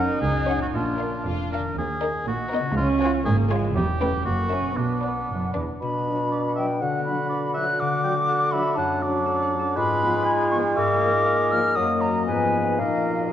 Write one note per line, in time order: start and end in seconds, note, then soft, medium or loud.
0.00 0.11 F#1 medium
0.00 0.11 F#2 medium
0.00 0.67 F#2 medium
0.00 0.15 C#4 medium
0.00 0.69 C#4 soft
0.00 0.72 D#4 medium
0.00 0.21 A#4 medium
0.00 0.64 A#4 soft
0.00 0.15 C#5 medium
0.00 0.74 C#5 soft
0.00 0.16 F#5 medium
0.22 0.63 C#2 medium
0.22 0.60 G#4 medium
0.48 0.68 C#4 soft
0.48 0.67 C#5 soft
0.48 0.67 F#5 soft
0.57 1.71 A#2 soft
0.61 1.62 A#3 soft
0.61 0.67 F#4 medium
0.65 1.67 A#4 soft
0.70 1.15 A#2 medium
0.70 1.51 D4 soft
0.70 1.77 D5 soft
0.74 1.15 A#1 medium
0.74 1.25 F4 medium
0.99 1.19 D4 soft
0.99 1.19 A#4 soft
0.99 1.19 F5 soft
1.26 1.67 F1 soft
1.26 1.66 F2 soft
1.26 1.50 F4 soft
1.51 1.60 D4 soft
1.51 1.76 A#4 medium
1.51 1.70 F5 soft
1.59 2.70 D#3 soft
1.64 2.72 A#3 soft
1.68 2.74 A#4 soft
1.73 2.77 D#5 soft
1.77 2.17 D#2 medium
1.77 2.27 G#4 medium
2.02 2.21 D#4 soft
2.02 2.21 A#4 soft
2.02 2.21 D#5 soft
2.27 2.67 A#1 medium
2.27 2.67 A#2 medium
2.27 2.35 A#3 soft
2.27 2.76 F#4 medium
2.52 2.61 B3 medium
2.52 2.70 D#4 medium
2.52 2.70 A#4 medium
2.52 2.71 D#5 medium
2.60 3.69 C#3 medium
2.64 4.73 C#4 soft
2.69 3.74 F4 soft
2.73 2.88 F4 medium
2.73 3.76 F5 soft
2.78 3.17 C#2 medium
2.78 3.26 C#4 medium
3.01 3.20 F4 medium
3.01 3.12 F#4 medium
3.01 3.20 C#5 medium
3.01 3.20 G#5 medium
3.25 3.66 G#1 medium
3.25 3.66 G#2 medium
3.25 3.51 A#3 medium
3.25 3.37 G#4 medium
3.50 3.77 G#3 medium
3.50 3.70 F4 medium
3.50 3.70 C#5 medium
3.50 3.69 G#5 medium
3.59 4.19 E2 medium
3.63 4.22 B3 soft
3.68 4.17 E4 soft
3.73 4.15 E1 medium
3.73 3.85 G3 medium
3.73 4.22 G4 medium
3.73 4.21 C#5 soft
3.77 4.16 E2 medium
4.01 4.09 A3 medium
4.01 4.20 C#4 medium
4.01 4.20 B4 medium
4.01 4.20 G5 medium
4.09 4.71 F#2 soft
4.13 4.73 A#3 soft
4.18 4.75 E4 soft
4.22 4.67 F#1 medium
4.22 4.79 F#4 medium
4.22 4.78 C#5 soft
4.26 4.67 F#2 soft
4.26 4.51 A#3 soft
4.51 4.77 C#4 medium
4.51 4.71 C#4 soft
4.51 4.71 A#4 soft
4.51 4.71 E5 soft
4.61 5.75 B2 soft
4.65 5.98 B3 soft
4.70 8.60 D4 soft
4.74 5.19 B1 soft
4.74 5.18 B2 soft
4.74 5.54 B3 soft
4.74 5.55 D4 medium
4.74 8.64 D5 soft
5.03 5.23 D4 soft
5.03 5.23 B4 soft
5.03 5.22 D5 soft
5.03 5.51 F#5 soft
5.29 5.70 F#1 soft
5.29 5.54 F#2 soft
5.54 5.63 E2 soft
5.54 5.75 D4 soft
5.54 5.75 B4 soft
5.54 5.74 D5 soft
5.54 5.61 D6 medium
5.81 6.83 B2 medium
5.81 6.84 B2 medium
5.81 6.83 D4 soft
5.81 6.55 B5 medium
5.99 6.97 B3 soft
6.08 6.17 F#3 soft
6.08 6.17 D4 soft
6.16 7.14 F#4 soft
6.32 6.64 B4 soft
6.32 6.43 D5 medium
6.49 7.46 F#5 soft
6.56 6.66 F#3 soft
6.56 6.66 D4 soft
6.56 6.67 E5 medium
6.56 6.83 G5 medium
6.65 7.30 B4 soft
6.81 8.77 D3 medium
6.81 7.80 D3 medium
6.81 8.80 F#4 medium
6.81 7.29 F#5 medium
6.81 7.04 F#5 medium
6.98 7.82 B3 soft
7.05 7.16 F#3 soft
7.05 7.16 D4 medium
7.05 7.54 B5 medium
7.15 8.12 F#4 soft
7.30 7.63 B4 soft
7.30 7.41 D5 medium
7.48 8.44 F#5 soft
7.54 7.65 F#3 medium
7.54 7.65 D4 medium
7.54 7.66 E5 medium
7.54 7.81 F#6 medium
7.64 7.82 B4 soft
7.79 8.81 D3 medium
7.79 8.03 F#5 medium
7.79 8.53 D6 medium
7.97 8.93 A3 soft
8.04 8.13 F#3 medium
8.04 8.13 D4 medium
8.04 8.15 G5 medium
8.13 9.09 F#4 soft
8.28 8.60 A4 medium
8.28 8.55 F#5 medium
8.45 9.41 F#5 medium
8.52 8.62 F#3 medium
8.52 8.63 D4 medium
8.52 8.78 E5 medium
8.52 8.77 B5 medium
8.61 9.25 A4 medium
8.76 9.79 F#2 medium
8.76 9.78 F#3 medium
8.76 9.77 D4 medium
8.76 9.04 F#5 medium
8.76 9.02 A5 medium
8.94 9.79 A3 soft
9.03 9.12 F#3 medium
9.03 9.12 D4 medium
9.03 9.78 D5 medium
9.10 9.79 F#4 medium
9.26 9.58 A4 medium
9.43 9.79 F#5 medium
9.52 9.61 F#3 medium
9.52 9.61 D4 medium
9.59 9.79 A4 medium
9.76 10.75 G#2 medium
9.76 11.78 G#3 medium
9.76 10.80 F4 medium
9.76 10.27 B4 medium
9.76 10.48 B5 loud
9.93 11.79 G#3 medium
10.03 10.12 F3 medium
10.03 10.12 B3 medium
10.10 11.08 F4 medium
10.26 10.59 G#4 medium
10.26 10.76 G#5 medium
10.43 11.41 F5 medium
10.52 10.61 F3 medium
10.52 10.61 B3 medium
10.52 10.58 C#6 medium
10.60 11.79 G#4 medium
10.76 11.79 G#2 medium
10.76 12.00 A#4 medium
10.76 11.25 F5 medium
10.76 11.52 D6 medium
10.93 11.92 A#3 medium
11.01 11.11 F3 medium
11.01 11.11 A#3 medium
11.09 11.78 F4 medium
11.26 11.58 A#4 medium
11.26 11.37 F5 medium
11.43 11.79 F5 soft
11.50 11.60 F3 medium
11.50 11.61 A#3 medium
11.50 11.62 D5 medium
11.50 11.77 F6 loud
11.59 12.29 A#4 medium
11.75 12.30 F#2 medium
11.75 12.24 F#3 medium
11.75 12.10 F#3 medium
11.75 12.24 A#3 medium
11.75 12.49 D#5 medium
11.75 12.02 D#6 medium
11.93 12.30 A#3 soft
12.01 12.26 A#5 medium
12.11 12.30 F#4 soft
12.11 12.30 D#5 soft
12.27 12.82 G#2 medium
12.27 12.78 F3 medium
12.27 12.82 G#3 medium
12.27 12.80 B3 medium
12.27 12.81 B4 soft
12.27 12.77 G#5 medium
12.45 12.82 B3 soft
12.62 13.14 F4 soft
12.62 13.33 F5 soft
12.78 13.32 A#2 soft
12.78 13.31 F3 medium
12.78 13.33 A#3 medium
12.78 13.33 D#4 medium
12.78 13.24 A#4 soft
12.78 13.33 D#5 soft
12.78 13.33 F5 medium
12.97 13.33 A#3 soft
13.15 13.33 F4 soft
13.15 13.33 D#5 soft